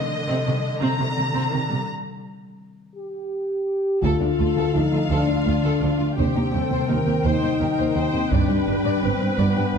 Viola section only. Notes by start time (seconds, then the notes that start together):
Already playing: D3
0.27 C4
0.46 D#3
0.81 C4
0.99 D#3
1.17 G3
1.34 C4
1.50 D#3
1.69 G3
4.03 A4
5.09 F4
6.16 G4
6.53 A4
6.89 A#4
7.25 C5
7.61 A#4
7.96 C5
8.31 B4